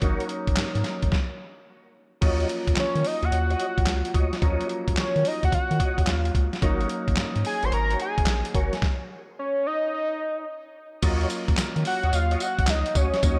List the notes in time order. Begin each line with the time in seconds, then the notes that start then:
0.01 G#1 F#3 A#3 C#4 D#4 F#4 A#4 C#5, kick, closed hi-hat
0.20 closed hi-hat
0.29 closed hi-hat
0.47 G#1, kick, closed hi-hat
0.56 G#2 F#3 A#3 C#4 D#4, snare, clap, closed hi-hat
0.75 G#2, closed hi-hat
0.84 snare, closed hi-hat
1.02 G#1, kick, closed hi-hat
1.12 kick, snare
2.21 D#2 F3 F#3 A#3 C#4 F#4 C#5 D#5, kick, closed hi-hat, crash
2.40 closed hi-hat
2.49 closed hi-hat
2.68 D#2, kick, closed hi-hat
2.76 D#3 C#5, snare, clap, closed hi-hat
2.95 D#3, closed hi-hat
3.05 D#5, open hi-hat
3.23 D#2 F#4 C#5 D#5 F#5, closed hi-hat
3.32 D#2 F#5, closed hi-hat
3.50 F#4 C#5 D#5, closed hi-hat
3.60 closed hi-hat
3.78 A#1, kick, closed hi-hat
3.86 C#2, snare, clap, closed hi-hat
4.05 closed hi-hat
4.14 D2 F#4 C#5 D#5, kick, closed hi-hat
4.33 snare, closed hi-hat
4.42 D#2 F3 F#3 A#3 C#4 F#4 C#5 D#5, kick, closed hi-hat
4.61 closed hi-hat
4.69 closed hi-hat
4.88 D#2, kick, closed hi-hat
4.97 D#3 C#5, snare, clap, closed hi-hat
5.16 D#3, closed hi-hat
5.25 D#5, open hi-hat
5.43 D#2 F#5, kick, closed hi-hat
5.52 D#3 F#5, kick, closed hi-hat
5.71 D#3, closed hi-hat
5.79 F#4 C#5 D#5, kick, closed hi-hat
5.98 D#2, kick, closed hi-hat
6.07 D#2 F5, snare, clap, closed hi-hat
6.25 closed hi-hat
6.35 C#2, kick, closed hi-hat
6.53 snare, closed hi-hat
6.62 G#1 F#3 A#3 C#4 D#4 F#4 A#4 C#5, kick, closed hi-hat
6.81 closed hi-hat
6.89 closed hi-hat
7.08 G#1, kick, closed hi-hat
7.16 G#2, snare, clap, closed hi-hat
7.36 G#2, closed hi-hat
7.45 G#5, open hi-hat
7.63 G#1 F#4 A#4 C#5 C6, closed hi-hat
7.72 G#1 A#5, closed hi-hat
7.90 F#4 A#4 C#5, closed hi-hat
8.00 G#5, closed hi-hat
8.18 F#1, kick, closed hi-hat
8.26 A#1, snare, clap, closed hi-hat
8.45 closed hi-hat
8.54 G1 F#4 A#4 C#5, kick, closed hi-hat
8.73 snare, closed hi-hat
8.82 kick, snare
9.39 C#5
9.67 D#5
9.94 D#5
11.02 D#2 F#3 A#3 C#4 F4 F#4 C#5 D#5, kick, closed hi-hat, crash, tambourine
11.21 closed hi-hat
11.30 closed hi-hat, tambourine
11.48 D#2, kick, closed hi-hat
11.57 D#3, snare, clap, closed hi-hat, tambourine
11.76 D#3, closed hi-hat
11.85 F#5, open hi-hat
12.03 D#2 F#4 C#5 D#5, closed hi-hat
12.13 D#2 F5, closed hi-hat, tambourine
12.31 F#4 C#5 D#5, closed hi-hat
12.40 F#5, closed hi-hat, tambourine
12.59 A#1, kick, closed hi-hat
12.67 C#2 D#5, snare, clap, closed hi-hat, tambourine
12.86 closed hi-hat
12.95 D2 F#4 C#5 D#5, kick, closed hi-hat, tambourine
13.14 snare, closed hi-hat
13.22 D#2 F#3 A#3 C#4 D#4 F#4 C#5 D#5, kick, closed hi-hat, tambourine